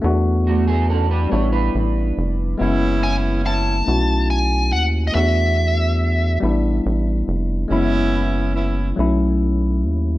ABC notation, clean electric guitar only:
X:1
M:6/8
L:1/16
Q:3/8=47
K:Elyd
V:1 name="Clean electric guitar"
z2 [=A,F] [B,G] [C=A] [=DB] [Ec] [DB]4- [DB] | z12 | z12 | z12 |]